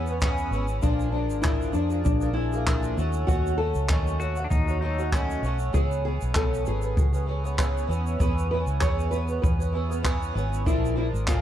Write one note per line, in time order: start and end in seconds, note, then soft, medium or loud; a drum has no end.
0.00 0.49 E2 medium
0.00 0.18 B3 medium
0.07 0.20 B3 soft
0.07 0.21 C#4 medium
0.07 0.21 G#4 medium
0.07 shaker soft
0.21 0.50 E3 medium
0.21 0.51 B3 medium
0.21 0.66 C#4 medium
0.21 0.52 C#4 medium
0.21 0.53 G#4 medium
0.21 kick medium
0.21 clap loud
0.21 shaker medium
0.38 shaker soft
0.51 0.80 G#1 medium
0.51 0.82 E3 medium
0.51 0.82 B3 medium
0.51 0.82 C#4 medium
0.51 0.82 G#4 medium
0.51 shaker soft
0.68 shaker medium
0.82 1.30 A#1 medium
0.82 1.13 A#2 medium
0.82 1.13 D3 medium
0.82 1.11 F3 medium
0.82 1.12 A#3 medium
0.82 1.11 D4 medium
0.82 1.13 D4 medium
0.82 1.13 G#4 medium
0.82 kick medium
0.82 shaker medium
1.00 shaker soft
1.12 1.43 F3 medium
1.12 1.42 A#3 medium
1.12 1.41 D4 medium
1.12 1.43 D4 medium
1.12 1.43 G#4 medium
1.30 1.71 G#1 medium
1.30 shaker soft
1.42 1.74 A#2 medium
1.42 1.74 D3 medium
1.42 1.72 F3 medium
1.42 1.72 A#3 medium
1.42 1.73 D4 medium
1.42 1.71 E4 medium
1.42 1.74 G#4 medium
1.42 kick loud
1.42 clap loud
1.42 shaker medium
1.62 shaker soft
1.73 2.03 F2 medium
1.73 1.91 F3 medium
1.73 1.90 A#3 soft
1.73 2.04 D4 medium
1.73 1.90 D4 medium
1.73 1.88 G#4 medium
1.73 shaker soft
1.90 2.22 F3 soft
1.90 2.21 A#3 soft
1.90 2.20 D4 soft
1.90 2.19 G#4 medium
1.90 shaker soft
2.05 2.94 A#1 loud
2.05 2.33 D4 medium
2.05 kick loud
2.05 shaker medium
2.20 2.33 F3 soft
2.20 2.34 A#3 soft
2.20 2.35 D4 soft
2.20 2.35 G#4 soft
2.20 shaker soft
2.33 2.52 F3 medium
2.33 2.53 A#3 medium
2.33 2.52 D4 medium
2.33 3.30 E4 medium
2.33 2.52 G#4 medium
2.53 2.65 F3 soft
2.53 2.66 A#3 soft
2.53 2.67 D4 soft
2.53 2.66 G#4 soft
2.53 shaker soft
2.66 2.98 A#2 medium
2.66 2.98 D3 medium
2.66 2.96 F3 medium
2.66 2.98 A#3 medium
2.66 2.98 D4 medium
2.66 2.98 G#4 medium
2.66 kick medium
2.66 clap loud
2.66 shaker medium
2.83 shaker soft
2.97 3.26 D#2 medium
2.97 3.26 F#3 medium
2.97 3.27 A3 medium
2.97 3.27 C#4 medium
2.97 3.27 F#4 medium
2.97 shaker soft
3.13 shaker medium
3.27 3.72 D#2 loud
3.27 3.58 D#3 medium
3.27 3.56 F#3 medium
3.27 3.57 A3 medium
3.27 3.58 C#4 medium
3.27 3.57 F#4 loud
3.27 3.59 F#4 medium
3.27 kick loud
3.27 shaker medium
3.47 shaker soft
3.57 3.87 F#3 medium
3.57 3.88 A3 medium
3.57 3.89 C#4 medium
3.57 3.89 F#4 medium
3.57 4.47 A4 medium
3.74 3.88 C#2 medium
3.74 shaker soft
3.88 4.48 D#2 medium
3.88 4.20 D#3 medium
3.88 4.18 F#3 medium
3.88 4.19 A3 medium
3.88 4.19 C#4 medium
3.88 4.20 F#4 medium
3.88 kick loud
3.88 clap loud
3.88 shaker medium
4.07 shaker soft
4.19 4.37 F#3 medium
4.19 4.37 A3 medium
4.19 4.38 C#4 medium
4.19 4.45 F#4 medium
4.19 4.36 F#4 medium
4.19 shaker soft
4.36 4.68 A3 soft
4.36 4.67 C#4 soft
4.36 4.66 F#4 medium
4.36 shaker soft
4.44 4.50 D4 medium
4.50 5.39 D#2 medium
4.50 4.80 D#4 medium
4.50 kick loud
4.50 shaker medium
4.67 4.81 A3 soft
4.67 4.81 C#4 medium
4.67 4.82 F#4 soft
4.67 shaker soft
4.81 4.99 F#3 medium
4.81 4.99 A3 medium
4.81 4.99 C#4 medium
4.81 5.13 D#4 medium
4.81 4.97 F#4 medium
4.98 5.12 A3 soft
4.98 5.12 C#4 medium
4.98 5.13 F#4 medium
4.98 shaker soft
5.12 5.44 D#3 medium
5.12 5.42 F#3 medium
5.12 5.43 A3 medium
5.12 5.57 C#4 medium
5.12 5.43 C#4 medium
5.12 5.44 F#4 medium
5.12 kick medium
5.12 clap loud
5.12 shaker medium
5.30 shaker soft
5.42 5.71 B1 medium
5.42 5.74 F#3 medium
5.42 5.73 A3 medium
5.42 5.73 C#4 medium
5.42 5.74 F#4 medium
5.42 shaker soft
5.59 shaker soft
5.72 6.18 C#2 medium
5.72 6.04 C#3 medium
5.72 6.03 E3 medium
5.72 6.03 B3 medium
5.72 6.04 C#4 medium
5.72 6.03 G#4 medium
5.72 6.05 G#4 medium
5.72 kick medium
5.72 shaker medium
5.92 shaker soft
6.04 6.34 E3 medium
6.04 6.35 B3 medium
6.04 6.35 C#4 medium
6.04 6.36 G#4 medium
6.21 6.63 B1 medium
6.21 shaker soft
6.34 6.66 C#3 medium
6.34 6.63 E3 medium
6.34 6.64 B3 medium
6.34 6.65 C#4 medium
6.34 6.65 A4 medium
6.34 kick loud
6.34 clap loud
6.34 shaker medium
6.54 shaker soft
6.64 6.95 G#1 medium
6.64 6.82 E3 medium
6.64 6.82 B3 soft
6.64 6.82 C#4 medium
6.64 6.80 G#4 medium
6.64 6.98 G#4 medium
6.64 shaker soft
6.81 7.13 B3 soft
6.81 7.13 C#4 soft
6.81 7.11 G#4 medium
6.81 shaker soft
6.97 7.85 C#2 loud
6.97 7.27 G#4 medium
6.97 kick loud
6.97 shaker medium
7.13 7.26 B3 soft
7.13 7.27 C#4 soft
7.13 7.27 G#4 soft
7.13 shaker soft
7.26 7.44 E3 medium
7.26 7.45 B3 medium
7.26 7.43 C#4 medium
7.26 7.42 G#4 medium
7.44 7.57 B3 soft
7.44 7.57 C#4 medium
7.44 7.57 G#4 medium
7.44 shaker soft
7.57 7.89 C#3 medium
7.57 7.86 E3 medium
7.57 7.87 B3 medium
7.57 7.88 C#4 medium
7.57 7.89 G#4 medium
7.57 kick medium
7.57 clap loud
7.57 shaker medium
7.78 shaker soft
7.87 8.18 E2 medium
7.87 8.18 E3 medium
7.87 8.19 B3 medium
7.87 8.19 C#4 medium
7.87 8.20 G#4 medium
7.92 shaker soft
8.07 shaker medium
8.19 8.64 E2 medium
8.19 8.51 E3 medium
8.19 8.51 B3 medium
8.19 8.51 C#4 medium
8.19 8.52 G#4 medium
8.19 8.50 B4 medium
8.19 kick loud
8.19 shaker medium
8.38 shaker soft
8.51 8.80 E3 medium
8.51 8.80 B3 medium
8.51 8.82 C#4 medium
8.51 8.82 G#4 medium
8.51 8.59 B4 medium
8.66 8.80 C#2 medium
8.66 shaker soft
8.81 9.40 E2 medium
8.81 9.10 E3 medium
8.81 9.11 B3 medium
8.81 9.12 C#4 medium
8.81 9.13 G#4 medium
8.81 9.10 C#5 loud
8.81 kick loud
8.81 clap loud
8.81 shaker medium
8.99 shaker soft
9.11 9.29 E3 medium
9.11 9.30 B3 medium
9.11 9.29 C#4 medium
9.11 9.28 G#4 medium
9.11 9.41 B4 medium
9.11 shaker soft
9.28 9.60 B3 soft
9.28 9.59 C#4 soft
9.28 9.58 G#4 soft
9.28 shaker medium
9.42 10.32 E2 loud
9.42 9.71 B4 medium
9.42 kick loud
9.42 shaker medium
9.59 9.72 B3 soft
9.59 9.74 C#4 soft
9.59 9.74 G#4 soft
9.59 shaker soft
9.72 9.90 E3 medium
9.72 9.91 B3 medium
9.72 9.89 C#4 medium
9.72 9.88 G#4 medium
9.89 10.02 B3 medium
9.89 10.03 C#4 soft
9.89 10.03 G#4 medium
9.89 shaker soft
10.03 10.33 E3 medium
10.03 10.34 B3 medium
10.03 10.34 C#4 medium
10.03 10.35 G#4 medium
10.03 kick medium
10.03 clap loud
10.03 shaker medium
10.23 shaker soft
10.34 10.64 G#1 medium
10.34 10.66 E3 medium
10.34 10.66 B3 medium
10.34 10.66 C#4 medium
10.34 10.66 G#4 medium
10.34 shaker soft
10.53 shaker medium
10.66 11.10 A#1 loud
10.66 10.97 A#2 medium
10.66 10.97 D3 medium
10.66 10.94 F3 medium
10.66 10.95 A#3 medium
10.66 10.96 D4 medium
10.66 10.97 E4 medium
10.66 10.97 G#4 medium
10.66 kick loud
10.66 shaker medium
10.85 shaker soft
10.96 11.26 F3 medium
10.96 11.26 A#3 medium
10.96 11.27 D4 medium
10.96 11.06 E4 medium
10.96 11.27 G#4 medium
11.13 11.41 G#1 medium
11.13 shaker soft
11.27 11.41 A#2 medium
11.27 11.41 D3 medium
11.27 11.41 F3 medium
11.27 11.41 A#3 medium
11.27 11.41 D4 medium
11.27 11.41 F4 medium
11.27 11.41 G#4 medium
11.27 kick loud
11.27 clap loud
11.27 shaker medium